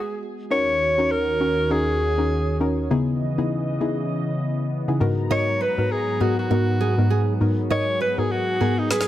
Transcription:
Already playing: analog synth pad G#3 B3 F#4 G#4, alto saxophone G#4
0.50 analog synth pad D#2 D#3 F#4 C#5, synth pluck C#4 D#4 F#4 A#4, alto saxophone C#5
0.98 synth pluck C#4 D#4 F#4 A#4
1.11 alto saxophone A#4
1.40 synth pluck C#4 D#4 F#4 A#4
1.70 synth pluck C#4 D#4 F#4 A#4, alto saxophone G#4
2.18 synth pluck C#4 D#4 F#4 A#4
2.60 synth pluck C#4 D#4 F#4 A#4
2.90 synth pluck C#3 B3 D#4 E4 G#4, analog synth pad C#3 E3 B3 D#5
3.38 synth pluck C#3 B3 D#4 E4 G#4
3.80 synth pluck C#3 B3 D#4 E4 G#4
4.88 synth pluck C#3 B3 D#4 E4 G#4
5.00 synth pluck G#2 B3 D#4 F#4 A#4, analog synth pad G#2 F#3 A#5
5.30 synth pluck G#2 B3 D#4 F#4 A#4, alto saxophone C#5, nylon-string guitar D#5
5.61 nylon-string guitar B4, alto saxophone B4
5.78 synth pluck G#2 B3 D#4 F#4 A#4
5.91 alto saxophone G#4
6.20 synth pluck G#2 B3 D#4 F#4 A#4, alto saxophone F#4, nylon-string guitar G#4
6.39 alto saxophone F#4
6.50 synth pluck G#2 B3 D#4 F#4 A#4, nylon-string guitar F#4
6.81 nylon-string guitar G#4
6.98 synth pluck G#2 B3 D#4 F#4 A#4
7.10 nylon-string guitar G#4
7.40 synth pluck G#2 B3 D#4 F#4 A#4, analog synth pad G#4
7.70 synth pluck G#2 B3 D#4 F#4 A#4, alto saxophone C#5, nylon-string guitar D#5
8.01 nylon-string guitar B4, alto saxophone B4
8.18 synth pluck G#2 B3 D#4 F#4 A#4, alto saxophone G#4
8.31 alto saxophone F#4
8.60 synth pluck G#2 B3 D#4 F#4 A#4, nylon-string guitar G#4
8.78 alto saxophone D#4
8.90 alto saxophone G#4, nylon-string guitar B4, snare
9.01 snare

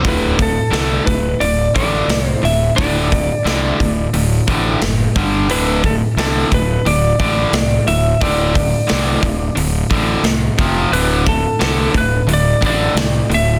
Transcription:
0.03 fingered electric bass D1, distorted electric guitar D2 A2 D3, kick, open hi-hat
0.08 lead electric guitar B4
0.39 distorted electric guitar D2 A2, lead electric guitar A4, kick, open hi-hat
0.71 fingered electric bass C2, distorted electric guitar D2 A2 D3, lead electric guitar A4, snare, open hi-hat
1.04 fingered electric bass D1, distorted electric guitar D2 A2, lead electric guitar B4, kick, open hi-hat
1.40 fingered electric bass D1, distorted electric guitar D2 A2, lead electric guitar D5, open hi-hat
1.74 fingered electric bass A1, distorted electric guitar D2 A2 D3, lead electric guitar D5, kick, open hi-hat
2.08 fingered electric bass C2, distorted electric guitar D2 A2, snare, open hi-hat
2.28 lead electric guitar C5
2.43 fingered electric bass D1, distorted electric guitar D2 A2, lead electric guitar E5, open hi-hat
2.76 fingered electric bass D1, distorted electric guitar D2 A2 D3, lead electric guitar D5, kick, open hi-hat
3.11 distorted electric guitar D2 A2, kick, open hi-hat
3.45 fingered electric bass C2, distorted electric guitar D2 A2 D3, snare, open hi-hat
3.79 fingered electric bass D1, distorted electric guitar D2 A2, kick, open hi-hat
4.13 fingered electric bass D1, distorted electric guitar D2 A2, open hi-hat
4.47 fingered electric bass A1, distorted electric guitar D2 A2 D3, kick, open hi-hat
4.81 fingered electric bass F#1, distorted electric guitar D2 A2, snare, open hi-hat
5.16 fingered electric bass G1, distorted electric guitar G2 D3 G3, kick, open hi-hat
5.49 fingered electric bass D1, distorted electric guitar D2 A2 D3, lead electric guitar B4, open hi-hat
5.84 distorted electric guitar D2 A2, lead electric guitar A4, kick, open hi-hat
6.17 fingered electric bass C2, distorted electric guitar D2 A2 D3, lead electric guitar A4, snare, open hi-hat
6.52 fingered electric bass D1, distorted electric guitar D2 A2, lead electric guitar B4, kick, open hi-hat
6.86 fingered electric bass D1, distorted electric guitar D2 A2, lead electric guitar D5, open hi-hat
7.19 fingered electric bass A1, distorted electric guitar D2 A2 D3, lead electric guitar D5, kick, open hi-hat
7.52 fingered electric bass C2, distorted electric guitar D2 A2, snare, open hi-hat
7.87 fingered electric bass D1, distorted electric guitar D2 A2, lead electric guitar E5, open hi-hat
8.21 fingered electric bass D1, distorted electric guitar D2 A2 D3, lead electric guitar D5, kick, open hi-hat
8.55 distorted electric guitar D2 A2, kick, open hi-hat
8.87 distorted electric guitar D2 A2 D3, snare, open hi-hat
8.91 fingered electric bass C2
9.23 fingered electric bass D1, distorted electric guitar D2 A2, kick, open hi-hat
9.55 fingered electric bass D1, distorted electric guitar D2 A2, open hi-hat
9.90 fingered electric bass A1, distorted electric guitar D2 A2 D3, kick, open hi-hat
10.23 fingered electric bass C2, distorted electric guitar D2 A2, snare, open hi-hat
10.58 fingered electric bass F1, distorted electric guitar F2 C3 F3, kick, open hi-hat
10.91 fingered electric bass D1, distorted electric guitar D2 A2 D3, lead electric guitar B4, open hi-hat
11.25 distorted electric guitar D2 A2, lead electric guitar A4, kick, open hi-hat
11.60 fingered electric bass C2, distorted electric guitar D2 A2 D3, lead electric guitar A4, snare, open hi-hat
11.94 fingered electric bass D1, distorted electric guitar D2 A2, lead electric guitar B4, kick, open hi-hat
12.27 fingered electric bass D1, distorted electric guitar D2 A2, open hi-hat
12.33 lead electric guitar D5
12.62 fingered electric bass A1, distorted electric guitar D2 A2 D3, lead electric guitar D5, kick, open hi-hat
12.95 fingered electric bass C2, distorted electric guitar D2 A2, snare, open hi-hat
13.29 fingered electric bass D1, distorted electric guitar D2 A2, open hi-hat
13.34 lead electric guitar E5

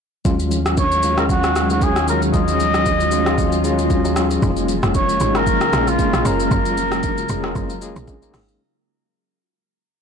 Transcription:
0.25 sub bass D#2, string machine D#3 F#3 G#3 C#4 F5, tine electric piano F#3 G#3 C#4 F4, kick, low conga, shaker
0.39 shaker
0.51 low conga, shaker
0.66 cross-stick, shaker
0.77 muted trumpet C#5, kick, high bongo, shaker
0.92 shaker
1.03 tine electric piano F#3 G#3 C#4 F4, low bongo, shaker
1.17 tine electric piano F#3 G#3 C#4 F4, muted trumpet A#4, cross-stick, shaker
1.29 muted trumpet F#4, kick, low conga, shaker
1.44 cross-stick, shaker
1.55 tine electric piano F#3 G#3 C#4 G#4, cross-stick, shaker
1.70 muted trumpet F#4, low bongo, shaker
1.82 muted trumpet G#4, kick, high bongo, shaker
1.96 tine electric piano F#3 G#3 C#4 F4, cross-stick, shaker
2.08 muted trumpet A#4, shaker
2.22 shaker
2.33 tine electric piano F#3 G#3 C#4 F4, string machine F4, muted trumpet D#5, kick, low conga, shaker
2.48 shaker
2.60 low conga, shaker
2.74 cross-stick, shaker
2.86 kick, high bongo, shaker
3.00 shaker
3.12 tine electric piano F#3 G#3 C#4 F4, low bongo, shaker
3.26 tine electric piano F#3 G#3 C#4 F4, cross-stick, shaker
3.38 kick, low conga, shaker
3.52 shaker
3.64 tine electric piano F#3 G#3 C#4 F4, shaker
3.79 low bongo, shaker
3.90 kick, high bongo, shaker
4.04 tine electric piano F#3 G#3 C#4 F4, shaker
4.16 cross-stick, shaker
4.31 shaker
4.42 log drum bass F1, string machine C#3 F3 A#3 F4, tine electric piano G#3 A#3 C#4 D#4, kick, low conga, shaker
4.50 tine electric piano F4
4.57 shaker
4.68 low conga, shaker
4.83 log drum bass F1, cross-stick, shaker
4.94 muted trumpet C#5, kick, high bongo, shaker
5.09 shaker
5.20 log drum bass G#1, tine electric piano G#3 A#3 C#4 D#4, low bongo, shaker
5.35 tine electric piano G#3 A#3 C#4 F4, muted trumpet A#4, cross-stick, shaker
5.47 kick, low conga, shaker
5.61 cross-stick, shaker
5.73 log drum bass A#1, tine electric piano G#3 A#3 C#4 G#4, cross-stick, shaker
5.87 muted trumpet F4, low bongo, shaker
5.99 kick, high bongo, shaker
6.13 log drum bass A#1, tine electric piano G#3 A#3 C#4 G#4, cross-stick, shaker
6.25 log drum bass F#1, string machine F#3, tine electric piano G#3 A#3 C#4 F4, muted trumpet A#4, shaker
6.40 shaker
6.51 log drum bass F#1, kick, low conga, shaker
6.66 shaker
6.77 low conga, shaker
6.92 cross-stick, shaker
7.03 kick, high bongo, shaker
7.18 shaker
7.29 log drum bass F1, tine electric piano G#3 A#3 C#4 G#4, low bongo, shaker
7.43 tine electric piano G#3 A#3 C#4 F4, cross-stick
7.56 log drum bass F#1, kick, low conga, shaker
7.70 shaker
7.81 tine electric piano G#3 A#3 C#4 G#4, shaker
7.96 log drum bass A#1, low bongo, shaker
8.08 kick, high bongo, shaker
8.22 tine electric piano G#3 A#3 C#4 D#4, shaker
8.34 log drum bass G#1, cross-stick, open hi-hat, shaker
8.48 shaker

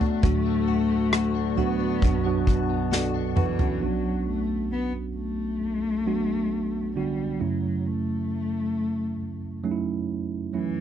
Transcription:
Already playing: tine electric piano B2 F#3 A3 B3 D4 F#4, woodwind section B2 F#3 A3 D4, clean electric guitar B2 A3 F#4, cello A3
0.01 clean electric guitar D4, floor tom
0.23 tine electric piano D2 A2 F#3 A3 D4 F#4, woodwind section D2 D3 F#4, clean electric guitar D3, kick, floor tom
0.46 clean electric guitar A3
0.68 clean electric guitar F#4
0.90 clean electric guitar A3
1.13 clean electric guitar F#4, cross-stick
1.35 clean electric guitar D4
1.57 tine electric piano F#3 A3 D4 F#4, cello B3, clean electric guitar F#4, floor tom
1.79 clean electric guitar D4
2.02 tine electric piano B1 F#2 F#3 B3 D4 F#4, clean electric guitar B2, woodwind section B2 B3 D4, kick, floor tom
2.24 tine electric piano F#3 B3 D4 F#4, clean electric guitar B3
2.47 clean electric guitar F#4, kick
2.69 clean electric guitar B3
2.92 clean electric guitar F#4, tine electric piano A4 D5, snare
3.14 clean electric guitar D4
3.36 cello E3, clean electric guitar F#4, tine electric piano F#4 B4, mid tom
3.59 tine electric piano C#4 F#4, clean electric guitar D4, floor tom
3.82 tine electric piano B1 F#3 B3 D4 F#4, cello F#3
4.26 cello A3
4.72 cello B3
5.16 cello A3
6.06 tine electric piano F#3 B3 D4 F#4
6.96 tine electric piano D3 B3 D4 F#4, cello G3
7.40 tine electric piano F#2 C#3 F#3 A3 C#4 E4, cello F#3
7.86 cello A3
9.64 tine electric piano F#3 A3 C#4 D#4
9.71 tine electric piano E4
10.53 cello E3, tine electric piano F#3 A3 C#4 E4

